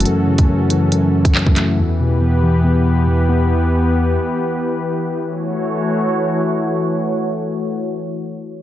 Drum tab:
HH |x--x--x-x--x--x-|----------------|----------------|----------------|
CP |------------x-x-|----------------|----------------|----------------|
BD |---o-------o-o--|----------------|----------------|----------------|

HH |----------------|
CP |----------------|
BD |----------------|